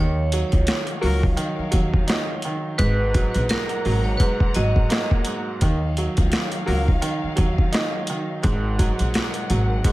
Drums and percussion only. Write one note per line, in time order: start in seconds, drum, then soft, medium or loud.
0.32 closed hi-hat medium
0.52 kick medium
0.52 closed hi-hat medium
0.67 snare loud
0.67 closed hi-hat medium
0.87 closed hi-hat medium
1.03 open hi-hat medium
1.23 kick medium
1.37 closed hi-hat loud
1.72 kick medium
1.72 closed hi-hat medium
1.94 kick loud
2.08 snare loud
2.08 closed hi-hat loud
2.42 closed hi-hat medium
2.79 kick loud
2.79 closed hi-hat medium
3.14 kick loud
3.14 closed hi-hat medium
3.34 closed hi-hat medium
3.49 snare loud
3.49 closed hi-hat medium
3.69 closed hi-hat medium
3.85 open hi-hat medium
4.20 kick medium
4.20 closed hi-hat medium
4.40 kick loud
4.54 closed hi-hat medium
4.76 kick loud
4.90 snare loud
4.90 closed hi-hat loud
5.11 kick medium
5.25 closed hi-hat medium
5.61 kick loud
5.61 closed hi-hat medium
5.97 closed hi-hat medium
6.17 kick loud
6.17 closed hi-hat medium
6.32 snare loud
6.32 closed hi-hat medium
6.52 closed hi-hat medium
6.68 open hi-hat medium
6.88 kick medium
7.02 closed hi-hat medium
7.37 kick medium
7.37 closed hi-hat medium
7.58 kick medium
7.73 snare loud
7.73 closed hi-hat loud
8.07 closed hi-hat medium
8.43 kick loud
8.43 closed hi-hat medium
8.79 kick loud
8.79 closed hi-hat medium
8.99 closed hi-hat medium
9.14 snare loud
9.14 closed hi-hat medium
9.34 closed hi-hat medium
9.50 closed hi-hat medium
9.84 kick medium
9.84 closed hi-hat loud